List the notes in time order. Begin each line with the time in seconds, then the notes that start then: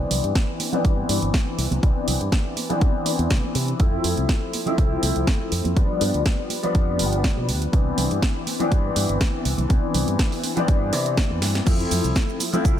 Already playing: E3 B3 C4 D4
0.11 C2, open hi-hat, low conga
0.24 G2, closed hi-hat, shaker
0.35 kick, snare, closed hi-hat
0.60 open hi-hat, high conga
0.72 E3 B3 C4 D4, closed hi-hat, low conga, shaker
0.85 G2, kick, closed hi-hat
1.09 G2, open hi-hat, high conga
1.22 G1, closed hi-hat, shaker
1.34 kick, snare, closed hi-hat
1.58 C2, open hi-hat
1.70 C2, closed hi-hat, high conga, low conga, shaker
1.82 E3 B3 C4 D4, kick, closed hi-hat
2.08 C2, open hi-hat, low conga
2.21 G2, closed hi-hat
2.32 kick, snare, closed hi-hat
2.57 open hi-hat, high conga
2.69 E3 B3 C4 D4, closed hi-hat, low conga, shaker
2.81 G2, kick, closed hi-hat
3.05 open hi-hat, high conga
3.19 E2, closed hi-hat
3.30 C3, kick, snare, closed hi-hat
3.44 high conga, shaker
3.55 C3, open hi-hat
3.68 closed hi-hat
3.79 F2 F3 A3 C4 E4, kick, closed hi-hat
4.04 F2, open hi-hat, low conga
4.17 C2, closed hi-hat
4.29 kick, snare, closed hi-hat
4.53 open hi-hat, high conga
4.66 F3 A3 C4 E4, closed hi-hat, low conga, shaker
4.78 C2, kick, closed hi-hat
5.03 C2, open hi-hat, high conga
5.16 C2, closed hi-hat, shaker
5.27 kick, snare, closed hi-hat
5.52 F2, open hi-hat
5.64 F2, closed hi-hat, high conga, low conga, shaker
5.76 G2 F3 G3 B3 D4, kick, closed hi-hat
5.90 shaker
6.01 G2, open hi-hat, low conga
6.14 D2, closed hi-hat
6.26 kick, snare, closed hi-hat
6.50 open hi-hat, high conga
6.63 F3 G3 B3 D4, closed hi-hat, low conga, shaker
6.75 F2, kick, closed hi-hat
6.99 G1, open hi-hat, high conga
7.12 closed hi-hat, shaker
7.24 kick, snare, closed hi-hat
7.37 B2, high conga, shaker
7.49 D2, open hi-hat
7.62 closed hi-hat
7.72 C2 E3 B3 C4 D4, kick, closed hi-hat
7.98 C2, open hi-hat, low conga
8.11 G2, closed hi-hat
8.22 kick, snare, closed hi-hat
8.47 open hi-hat, high conga
8.59 E3 B3 C4 D4, closed hi-hat, low conga, shaker
8.72 G2, kick, closed hi-hat
8.96 G2, open hi-hat, high conga
9.09 G1, closed hi-hat
9.21 kick, snare, closed hi-hat
9.45 C2, open hi-hat
9.58 C2, closed hi-hat, high conga, low conga, shaker
9.69 E3 B3 C4 D4, kick, closed hi-hat, high conga, shaker
9.84 shaker
9.94 C2, open hi-hat, low conga
10.08 G2, closed hi-hat, shaker
10.19 kick, snare, closed hi-hat
10.32 open hi-hat
10.43 open hi-hat, high conga
10.56 E3 B3 C4 D4, closed hi-hat, low conga, shaker
10.68 G2, kick, closed hi-hat
10.93 C3, open hi-hat, high conga
11.06 closed hi-hat, shaker
11.17 kick, snare, closed hi-hat
11.30 E2, high conga, shaker
11.42 G2, snare, open hi-hat
11.55 snare, closed hi-hat
11.66 F2 F3 A3 C4 E4, kick, closed hi-hat, crash, shaker
11.80 shaker
11.91 F2, open hi-hat, low conga, shaker
12.04 C2, closed hi-hat, shaker
12.16 kick, snare, closed hi-hat, shaker
12.29 shaker
12.40 open hi-hat, high conga, shaker
12.53 F3 A3 C4 E4, closed hi-hat, low conga, shaker
12.65 C2, kick, closed hi-hat, shaker